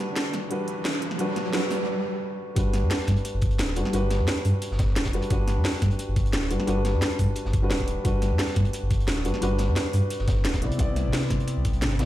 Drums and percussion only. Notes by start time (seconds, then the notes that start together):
0.16 snare, closed hi-hat
0.33 snare, closed hi-hat
0.51 closed hi-hat
0.68 closed hi-hat
0.85 snare, closed hi-hat
0.94 snare
1.02 closed hi-hat
1.11 snare
1.19 closed hi-hat
1.36 snare, closed hi-hat
1.53 snare, closed hi-hat
1.71 snare, open hi-hat
2.56 kick, closed hi-hat
2.73 snare, closed hi-hat
2.90 snare, closed hi-hat, open hi-hat
3.00 snare
3.07 kick, snare, closed hi-hat
3.17 closed hi-hat
3.25 closed hi-hat
3.41 kick, closed hi-hat
3.51 closed hi-hat
3.59 snare, closed hi-hat
3.68 snare
3.76 closed hi-hat
3.85 snare
3.93 closed hi-hat
4.11 snare, closed hi-hat
4.27 snare, closed hi-hat
4.37 closed hi-hat
4.45 closed hi-hat, open hi-hat
4.62 closed hi-hat
4.72 snare
4.79 kick, snare, closed hi-hat
4.87 snare
4.96 snare, closed hi-hat
5.05 kick, snare, closed hi-hat
5.13 snare, closed hi-hat
5.22 closed hi-hat
5.30 kick, closed hi-hat
5.48 snare, closed hi-hat
5.65 snare, closed hi-hat, open hi-hat
5.74 snare
5.82 kick, snare, closed hi-hat
5.91 closed hi-hat
5.99 closed hi-hat
6.16 kick, closed hi-hat
6.26 closed hi-hat
6.33 snare, closed hi-hat
6.42 snare
6.50 closed hi-hat
6.60 snare
6.67 closed hi-hat
6.85 snare, closed hi-hat
7.01 snare, closed hi-hat
7.10 closed hi-hat
7.19 kick, closed hi-hat, open hi-hat
7.36 closed hi-hat
7.45 snare
7.53 kick, closed hi-hat
7.70 snare, closed hi-hat
7.79 kick, snare
7.87 closed hi-hat
8.05 kick, closed hi-hat
8.22 snare, closed hi-hat
8.39 snare, closed hi-hat, open hi-hat
8.49 snare
8.56 kick, snare, closed hi-hat
8.65 closed hi-hat
8.73 closed hi-hat
8.91 kick, closed hi-hat
9.00 closed hi-hat
9.08 snare, closed hi-hat
9.17 snare
9.25 closed hi-hat
9.34 snare
9.42 closed hi-hat
9.58 snare, closed hi-hat
9.76 snare, closed hi-hat
9.86 closed hi-hat
9.93 closed hi-hat, open hi-hat
10.10 closed hi-hat
10.19 snare
10.28 kick, snare, closed hi-hat
10.36 snare
10.45 snare, closed hi-hat
10.54 kick, snare, closed hi-hat
10.62 snare, closed hi-hat
10.72 closed hi-hat
10.79 kick, closed hi-hat
10.96 snare, closed hi-hat
11.13 snare, closed hi-hat, open hi-hat
11.22 snare
11.30 kick, snare, closed hi-hat
11.40 closed hi-hat
11.47 closed hi-hat
11.65 kick, closed hi-hat
11.73 closed hi-hat
11.81 snare, closed hi-hat
11.90 snare
11.99 snare, closed hi-hat, open hi-hat